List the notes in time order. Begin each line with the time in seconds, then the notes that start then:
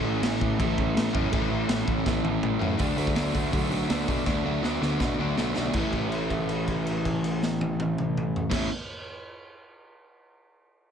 Already playing: A2 E3 A3 C#4 E4
0.03 A1
0.22 A1, snare, crash
0.41 A1, kick
0.58 A1 A2 E3 A3 C#4 E4, kick, crash
0.78 A1, kick
0.95 A1, snare, crash
1.13 F#2 A2 E3 A3, kick
1.31 A1 A2 E3 A3 C#4 E4, kick, crash
1.51 A1
1.69 A1, snare, crash
1.87 A1, kick
2.04 A1 A2 E3 A3 C#4 E4, kick, snare
2.24 A1, high tom
2.42 A1, mid tom
2.59 F#2 A2 E3 A3, floor tom
2.79 D2 D3 F#3 A3 D4 F#4, kick, open hi-hat
2.97 D2 D3 F#3 A3 D4 F#4, open hi-hat
3.07 kick
3.16 D2 D3 F#3 A3 D4 F#4, snare, open hi-hat
3.35 D2 D3 F#3 A3 D4 F#4, kick, open hi-hat
3.53 B1 D3 F#3 A3 D4 F#4, kick, open hi-hat
3.71 D3 F#3 A3 D4 F#4, open hi-hat
3.89 D2 D3 F#3 A3 D4 F#4, snare, open hi-hat
4.07 B2 D3 F#3 A3 D4 F#4, kick, open hi-hat
4.25 D2 D3 F#3 A3 D4 F#4, kick, snare
4.44 D2 D3 F#3 A3 D4 F#4
4.62 D2 D3 F#3 A3 D4 F#4, snare
4.81 D2 D3 F#3 A3 D4 F#4, snare
5.00 B2 D3 F#3 A3 D4 F#4, kick, snare
5.19 D2 D3 F#3 A3 D4 F#4
5.37 B1 D3 F#3 A3 D4 F#4, snare
5.56 B1 D3 F#3 A3 D4 F#4, snare
5.73 A1 A2 E3 A3 C#4, kick, crash
5.78 E4
5.93 kick, crash
6.12 crash
6.30 kick, crash
6.49 crash
6.68 kick, crash
6.87 crash
7.05 kick, crash
7.24 crash
7.43 snare
7.61 high tom
7.80 high tom
7.98 mid tom
8.17 mid tom
8.36 floor tom
8.50 A1 A2 E3 A3 C#4 E4, kick, snare, crash